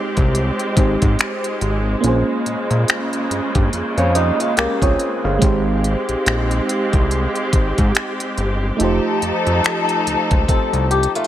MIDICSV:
0, 0, Header, 1, 6, 480
1, 0, Start_track
1, 0, Tempo, 845070
1, 1157, Time_signature, 4, 2, 24, 8
1, 6402, End_track
2, 0, Start_track
2, 0, Title_t, "FM electric piano"
2, 0, Program_c, 0, 5
2, 0, Control_c, 0, 64, 127
2, 0, Note_on_c, 0, 56, 72
2, 0, Note_on_c, 0, 60, 70
2, 0, Note_on_c, 0, 63, 67
2, 0, Note_on_c, 0, 65, 52
2, 0, Note_on_c, 0, 67, 69
2, 0, Note_on_c, 0, 72, 80
2, 0, Note_on_c, 0, 73, 61
2, 407, Note_off_c, 0, 56, 0
2, 412, Note_off_c, 0, 60, 0
2, 417, Note_off_c, 0, 63, 0
2, 423, Note_off_c, 0, 67, 0
2, 430, Note_on_c, 0, 56, 56
2, 435, Note_on_c, 0, 60, 50
2, 440, Note_on_c, 0, 63, 49
2, 444, Note_off_c, 0, 72, 0
2, 446, Note_on_c, 0, 67, 51
2, 451, Note_on_c, 0, 72, 62
2, 1139, Note_on_c, 0, 58, 77
2, 1150, Note_on_c, 0, 61, 67
2, 1154, Note_off_c, 0, 56, 0
2, 1156, Note_off_c, 0, 60, 0
2, 1158, Note_off_c, 0, 63, 0
2, 1161, Note_off_c, 0, 65, 0
2, 1161, Note_off_c, 0, 67, 0
2, 1161, Note_on_c, 0, 65, 68
2, 1164, Note_off_c, 0, 72, 0
2, 1164, Control_c, 0, 64, 0
2, 1167, Note_off_c, 0, 73, 0
2, 1171, Note_on_c, 0, 68, 69
2, 1182, Note_on_c, 0, 72, 80
2, 1258, Control_c, 0, 64, 127
2, 2571, Note_off_c, 0, 61, 0
2, 2576, Note_off_c, 0, 65, 0
2, 2581, Note_off_c, 0, 68, 0
2, 2587, Note_off_c, 0, 72, 0
2, 2602, Note_on_c, 0, 70, 66
2, 2605, Note_on_c, 0, 61, 54
2, 2732, Note_off_c, 0, 70, 0
2, 2734, Note_off_c, 0, 61, 0
2, 2741, Note_on_c, 0, 73, 73
2, 2744, Note_on_c, 0, 65, 59
2, 2805, Note_off_c, 0, 58, 0
2, 2967, Note_off_c, 0, 73, 0
2, 2968, Note_off_c, 0, 65, 0
2, 2980, Note_on_c, 0, 77, 62
2, 2984, Note_on_c, 0, 68, 53
2, 3059, Note_on_c, 0, 56, 76
2, 3069, Note_on_c, 0, 60, 71
2, 3080, Note_on_c, 0, 63, 66
2, 3084, Control_c, 0, 64, 0
2, 3090, Note_on_c, 0, 67, 70
2, 3101, Note_on_c, 0, 72, 84
2, 3176, Control_c, 0, 64, 127
2, 3206, Note_off_c, 0, 77, 0
2, 3208, Note_off_c, 0, 68, 0
2, 4965, Note_off_c, 0, 56, 0
2, 4971, Note_off_c, 0, 60, 0
2, 4976, Note_off_c, 0, 63, 0
2, 4979, Note_on_c, 0, 57, 71
2, 4981, Note_off_c, 0, 67, 0
2, 4986, Note_off_c, 0, 72, 0
2, 4990, Note_on_c, 0, 63, 66
2, 5001, Note_on_c, 0, 65, 68
2, 5005, Control_c, 0, 64, 0
2, 5012, Note_on_c, 0, 67, 68
2, 5022, Note_on_c, 0, 72, 82
2, 5114, Control_c, 0, 64, 127
2, 6402, Note_off_c, 0, 57, 0
2, 6402, Note_off_c, 0, 63, 0
2, 6402, Note_off_c, 0, 65, 0
2, 6402, Note_off_c, 0, 67, 0
2, 6402, Note_off_c, 0, 72, 0
2, 6402, End_track
3, 0, Start_track
3, 0, Title_t, "Steel-string acoustic guitar"
3, 0, Program_c, 1, 25
3, 2257, Note_on_c, 1, 61, 75
3, 2260, Note_on_c, 1, 53, 65
3, 2352, Note_off_c, 1, 61, 0
3, 2354, Note_off_c, 1, 53, 0
3, 2357, Note_on_c, 1, 63, 81
3, 2361, Note_on_c, 1, 55, 68
3, 2489, Note_off_c, 1, 63, 0
3, 2491, Note_off_c, 1, 55, 0
3, 2497, Note_on_c, 1, 65, 81
3, 2500, Note_on_c, 1, 56, 67
3, 2592, Note_off_c, 1, 65, 0
3, 2594, Note_off_c, 1, 56, 0
3, 2597, Note_on_c, 1, 67, 79
3, 2600, Note_on_c, 1, 58, 67
3, 2729, Note_off_c, 1, 67, 0
3, 2731, Note_off_c, 1, 58, 0
3, 2736, Note_on_c, 1, 68, 69
3, 2740, Note_on_c, 1, 60, 62
3, 3060, Note_off_c, 1, 68, 0
3, 3062, Note_off_c, 1, 60, 0
3, 5958, Note_on_c, 1, 69, 71
3, 5961, Note_on_c, 1, 60, 60
3, 6185, Note_off_c, 1, 69, 0
3, 6187, Note_off_c, 1, 60, 0
3, 6197, Note_on_c, 1, 67, 76
3, 6329, Note_off_c, 1, 67, 0
3, 6336, Note_on_c, 1, 65, 83
3, 6339, Note_on_c, 1, 57, 68
3, 6402, Note_off_c, 1, 57, 0
3, 6402, Note_off_c, 1, 65, 0
3, 6402, End_track
4, 0, Start_track
4, 0, Title_t, "String section"
4, 0, Program_c, 2, 48
4, 0, Note_on_c, 2, 56, 79
4, 0, Note_on_c, 2, 60, 67
4, 0, Note_on_c, 2, 67, 82
4, 1138, Note_off_c, 2, 60, 0
4, 1138, Note_off_c, 2, 67, 0
4, 1155, Note_on_c, 2, 49, 81
4, 1156, Note_on_c, 2, 58, 67
4, 3054, Note_off_c, 2, 56, 0
4, 3057, Note_off_c, 2, 49, 0
4, 3057, Note_off_c, 2, 58, 0
4, 3077, Note_on_c, 2, 67, 86
4, 3078, Note_on_c, 2, 56, 75
4, 3078, Note_on_c, 2, 60, 70
4, 4978, Note_off_c, 2, 56, 0
4, 4978, Note_off_c, 2, 60, 0
4, 4997, Note_on_c, 2, 53, 77
4, 4997, Note_on_c, 2, 63, 69
4, 4997, Note_on_c, 2, 69, 81
4, 6402, Note_off_c, 2, 53, 0
4, 6402, Note_off_c, 2, 63, 0
4, 6402, Note_off_c, 2, 67, 0
4, 6402, Note_off_c, 2, 69, 0
4, 6402, End_track
5, 0, Start_track
5, 0, Title_t, "Analog synth bass"
5, 0, Program_c, 3, 38
5, 97, Note_on_c, 3, 36, 87
5, 290, Note_off_c, 3, 36, 0
5, 436, Note_on_c, 3, 32, 91
5, 549, Note_off_c, 3, 32, 0
5, 580, Note_on_c, 3, 44, 100
5, 660, Note_off_c, 3, 44, 0
5, 916, Note_on_c, 3, 32, 91
5, 1110, Note_off_c, 3, 32, 0
5, 1156, Note_on_c, 3, 34, 108
5, 1269, Note_off_c, 3, 34, 0
5, 1398, Note_on_c, 3, 46, 46
5, 1453, Note_off_c, 3, 46, 0
5, 1536, Note_on_c, 3, 46, 101
5, 1618, Note_off_c, 3, 46, 0
5, 1877, Note_on_c, 3, 43, 46
5, 1933, Note_off_c, 3, 43, 0
5, 2018, Note_on_c, 3, 43, 87
5, 2098, Note_off_c, 3, 43, 0
5, 2118, Note_on_c, 3, 41, 47
5, 2173, Note_off_c, 3, 41, 0
5, 2257, Note_on_c, 3, 41, 89
5, 2450, Note_off_c, 3, 41, 0
5, 2598, Note_on_c, 3, 36, 48
5, 2654, Note_off_c, 3, 36, 0
5, 2736, Note_on_c, 3, 36, 80
5, 2818, Note_off_c, 3, 36, 0
5, 2977, Note_on_c, 3, 31, 97
5, 3058, Note_off_c, 3, 31, 0
5, 3077, Note_on_c, 3, 32, 100
5, 3383, Note_off_c, 3, 32, 0
5, 3457, Note_on_c, 3, 34, 48
5, 3497, Note_off_c, 3, 34, 0
5, 3558, Note_on_c, 3, 34, 98
5, 3751, Note_off_c, 3, 34, 0
5, 3938, Note_on_c, 3, 36, 90
5, 4131, Note_off_c, 3, 36, 0
5, 4276, Note_on_c, 3, 32, 87
5, 4389, Note_off_c, 3, 32, 0
5, 4421, Note_on_c, 3, 44, 103
5, 4500, Note_off_c, 3, 44, 0
5, 4757, Note_on_c, 3, 31, 85
5, 4951, Note_off_c, 3, 31, 0
5, 4997, Note_on_c, 3, 29, 99
5, 5109, Note_off_c, 3, 29, 0
5, 5237, Note_on_c, 3, 41, 46
5, 5293, Note_off_c, 3, 41, 0
5, 5376, Note_on_c, 3, 41, 97
5, 5458, Note_off_c, 3, 41, 0
5, 5717, Note_on_c, 3, 37, 48
5, 5773, Note_off_c, 3, 37, 0
5, 5857, Note_on_c, 3, 37, 81
5, 5938, Note_off_c, 3, 37, 0
5, 5956, Note_on_c, 3, 36, 47
5, 6012, Note_off_c, 3, 36, 0
5, 6095, Note_on_c, 3, 36, 86
5, 6289, Note_off_c, 3, 36, 0
5, 6402, End_track
6, 0, Start_track
6, 0, Title_t, "Drums"
6, 95, Note_on_c, 9, 42, 43
6, 97, Note_on_c, 9, 36, 87
6, 152, Note_off_c, 9, 42, 0
6, 153, Note_off_c, 9, 36, 0
6, 198, Note_on_c, 9, 42, 55
6, 255, Note_off_c, 9, 42, 0
6, 338, Note_on_c, 9, 42, 42
6, 394, Note_off_c, 9, 42, 0
6, 436, Note_on_c, 9, 36, 90
6, 436, Note_on_c, 9, 42, 67
6, 493, Note_off_c, 9, 36, 0
6, 493, Note_off_c, 9, 42, 0
6, 578, Note_on_c, 9, 42, 53
6, 580, Note_on_c, 9, 36, 78
6, 635, Note_off_c, 9, 42, 0
6, 637, Note_off_c, 9, 36, 0
6, 676, Note_on_c, 9, 42, 64
6, 685, Note_on_c, 9, 26, 112
6, 732, Note_off_c, 9, 42, 0
6, 742, Note_off_c, 9, 26, 0
6, 819, Note_on_c, 9, 42, 64
6, 876, Note_off_c, 9, 42, 0
6, 917, Note_on_c, 9, 42, 50
6, 973, Note_off_c, 9, 42, 0
6, 1157, Note_on_c, 9, 42, 73
6, 1214, Note_off_c, 9, 42, 0
6, 1399, Note_on_c, 9, 42, 62
6, 1456, Note_off_c, 9, 42, 0
6, 1537, Note_on_c, 9, 42, 39
6, 1594, Note_off_c, 9, 42, 0
6, 1637, Note_on_c, 9, 42, 64
6, 1646, Note_on_c, 9, 26, 98
6, 1694, Note_off_c, 9, 42, 0
6, 1703, Note_off_c, 9, 26, 0
6, 1778, Note_on_c, 9, 42, 47
6, 1834, Note_off_c, 9, 42, 0
6, 1881, Note_on_c, 9, 42, 76
6, 1938, Note_off_c, 9, 42, 0
6, 2016, Note_on_c, 9, 42, 42
6, 2017, Note_on_c, 9, 36, 87
6, 2073, Note_off_c, 9, 42, 0
6, 2074, Note_off_c, 9, 36, 0
6, 2118, Note_on_c, 9, 42, 55
6, 2175, Note_off_c, 9, 42, 0
6, 2259, Note_on_c, 9, 42, 44
6, 2315, Note_off_c, 9, 42, 0
6, 2358, Note_on_c, 9, 42, 69
6, 2415, Note_off_c, 9, 42, 0
6, 2500, Note_on_c, 9, 42, 56
6, 2557, Note_off_c, 9, 42, 0
6, 2596, Note_on_c, 9, 42, 65
6, 2605, Note_on_c, 9, 26, 105
6, 2653, Note_off_c, 9, 42, 0
6, 2662, Note_off_c, 9, 26, 0
6, 2736, Note_on_c, 9, 36, 78
6, 2739, Note_on_c, 9, 42, 64
6, 2793, Note_off_c, 9, 36, 0
6, 2796, Note_off_c, 9, 42, 0
6, 2837, Note_on_c, 9, 42, 51
6, 2894, Note_off_c, 9, 42, 0
6, 3077, Note_on_c, 9, 36, 109
6, 3077, Note_on_c, 9, 42, 72
6, 3134, Note_off_c, 9, 36, 0
6, 3134, Note_off_c, 9, 42, 0
6, 3319, Note_on_c, 9, 42, 63
6, 3376, Note_off_c, 9, 42, 0
6, 3458, Note_on_c, 9, 42, 42
6, 3514, Note_off_c, 9, 42, 0
6, 3558, Note_on_c, 9, 42, 65
6, 3566, Note_on_c, 9, 26, 99
6, 3615, Note_off_c, 9, 42, 0
6, 3623, Note_off_c, 9, 26, 0
6, 3698, Note_on_c, 9, 42, 49
6, 3755, Note_off_c, 9, 42, 0
6, 3802, Note_on_c, 9, 42, 74
6, 3859, Note_off_c, 9, 42, 0
6, 3936, Note_on_c, 9, 42, 40
6, 3937, Note_on_c, 9, 36, 89
6, 3993, Note_off_c, 9, 42, 0
6, 3994, Note_off_c, 9, 36, 0
6, 4039, Note_on_c, 9, 42, 53
6, 4096, Note_off_c, 9, 42, 0
6, 4178, Note_on_c, 9, 42, 46
6, 4234, Note_off_c, 9, 42, 0
6, 4276, Note_on_c, 9, 36, 89
6, 4277, Note_on_c, 9, 42, 72
6, 4333, Note_off_c, 9, 36, 0
6, 4333, Note_off_c, 9, 42, 0
6, 4419, Note_on_c, 9, 42, 56
6, 4420, Note_on_c, 9, 36, 80
6, 4475, Note_off_c, 9, 42, 0
6, 4477, Note_off_c, 9, 36, 0
6, 4515, Note_on_c, 9, 42, 67
6, 4525, Note_on_c, 9, 26, 112
6, 4572, Note_off_c, 9, 42, 0
6, 4581, Note_off_c, 9, 26, 0
6, 4659, Note_on_c, 9, 42, 67
6, 4715, Note_off_c, 9, 42, 0
6, 4757, Note_on_c, 9, 42, 50
6, 4814, Note_off_c, 9, 42, 0
6, 4997, Note_on_c, 9, 42, 70
6, 5054, Note_off_c, 9, 42, 0
6, 5238, Note_on_c, 9, 42, 62
6, 5295, Note_off_c, 9, 42, 0
6, 5377, Note_on_c, 9, 42, 41
6, 5433, Note_off_c, 9, 42, 0
6, 5477, Note_on_c, 9, 42, 62
6, 5486, Note_on_c, 9, 26, 100
6, 5534, Note_off_c, 9, 42, 0
6, 5542, Note_off_c, 9, 26, 0
6, 5617, Note_on_c, 9, 42, 48
6, 5674, Note_off_c, 9, 42, 0
6, 5720, Note_on_c, 9, 42, 75
6, 5777, Note_off_c, 9, 42, 0
6, 5855, Note_on_c, 9, 42, 42
6, 5856, Note_on_c, 9, 36, 87
6, 5911, Note_off_c, 9, 42, 0
6, 5913, Note_off_c, 9, 36, 0
6, 5955, Note_on_c, 9, 36, 87
6, 5957, Note_on_c, 9, 42, 57
6, 6012, Note_off_c, 9, 36, 0
6, 6014, Note_off_c, 9, 42, 0
6, 6097, Note_on_c, 9, 42, 43
6, 6154, Note_off_c, 9, 42, 0
6, 6196, Note_on_c, 9, 42, 74
6, 6253, Note_off_c, 9, 42, 0
6, 6266, Note_on_c, 9, 42, 62
6, 6323, Note_off_c, 9, 42, 0
6, 6336, Note_on_c, 9, 42, 51
6, 6392, Note_off_c, 9, 42, 0
6, 6402, End_track
0, 0, End_of_file